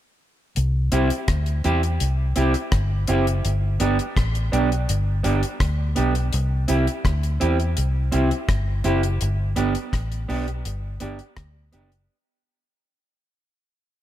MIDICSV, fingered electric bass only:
0, 0, Header, 1, 2, 480
1, 0, Start_track
1, 0, Key_signature, 1, "major"
1, 0, Tempo, 721154
1, 371, Time_signature, 4, 2, 24, 8
1, 9334, End_track
2, 0, Start_track
2, 0, Title_t, "Fingered electric bass"
2, 0, Program_c, 0, 33
2, 380, Note_on_c, 0, 36, 107
2, 595, Note_off_c, 0, 36, 0
2, 618, Note_on_c, 0, 36, 94
2, 729, Note_off_c, 0, 36, 0
2, 858, Note_on_c, 0, 38, 82
2, 1074, Note_off_c, 0, 38, 0
2, 1100, Note_on_c, 0, 40, 77
2, 1315, Note_off_c, 0, 40, 0
2, 1338, Note_on_c, 0, 36, 96
2, 1554, Note_off_c, 0, 36, 0
2, 1579, Note_on_c, 0, 36, 84
2, 1689, Note_off_c, 0, 36, 0
2, 1815, Note_on_c, 0, 31, 89
2, 2032, Note_off_c, 0, 31, 0
2, 2061, Note_on_c, 0, 30, 93
2, 2275, Note_off_c, 0, 30, 0
2, 2298, Note_on_c, 0, 31, 96
2, 2513, Note_off_c, 0, 31, 0
2, 2537, Note_on_c, 0, 31, 101
2, 2648, Note_off_c, 0, 31, 0
2, 2777, Note_on_c, 0, 33, 81
2, 2992, Note_off_c, 0, 33, 0
2, 3018, Note_on_c, 0, 35, 91
2, 3233, Note_off_c, 0, 35, 0
2, 3257, Note_on_c, 0, 31, 91
2, 3473, Note_off_c, 0, 31, 0
2, 3499, Note_on_c, 0, 31, 96
2, 3609, Note_off_c, 0, 31, 0
2, 3734, Note_on_c, 0, 38, 85
2, 3951, Note_off_c, 0, 38, 0
2, 3980, Note_on_c, 0, 35, 86
2, 4194, Note_off_c, 0, 35, 0
2, 4219, Note_on_c, 0, 36, 105
2, 4433, Note_off_c, 0, 36, 0
2, 4459, Note_on_c, 0, 36, 100
2, 4568, Note_off_c, 0, 36, 0
2, 4696, Note_on_c, 0, 38, 85
2, 4911, Note_off_c, 0, 38, 0
2, 4941, Note_on_c, 0, 40, 81
2, 5154, Note_off_c, 0, 40, 0
2, 5178, Note_on_c, 0, 36, 83
2, 5392, Note_off_c, 0, 36, 0
2, 5418, Note_on_c, 0, 36, 91
2, 5527, Note_off_c, 0, 36, 0
2, 5652, Note_on_c, 0, 31, 90
2, 5869, Note_off_c, 0, 31, 0
2, 5895, Note_on_c, 0, 30, 92
2, 6110, Note_off_c, 0, 30, 0
2, 6136, Note_on_c, 0, 31, 96
2, 6351, Note_off_c, 0, 31, 0
2, 6373, Note_on_c, 0, 31, 106
2, 6484, Note_off_c, 0, 31, 0
2, 6614, Note_on_c, 0, 33, 88
2, 6830, Note_off_c, 0, 33, 0
2, 6855, Note_on_c, 0, 35, 83
2, 7070, Note_off_c, 0, 35, 0
2, 7092, Note_on_c, 0, 31, 89
2, 7309, Note_off_c, 0, 31, 0
2, 7335, Note_on_c, 0, 31, 88
2, 7445, Note_off_c, 0, 31, 0
2, 7570, Note_on_c, 0, 38, 88
2, 7788, Note_off_c, 0, 38, 0
2, 7816, Note_on_c, 0, 30, 94
2, 8031, Note_off_c, 0, 30, 0
2, 9334, End_track
0, 0, End_of_file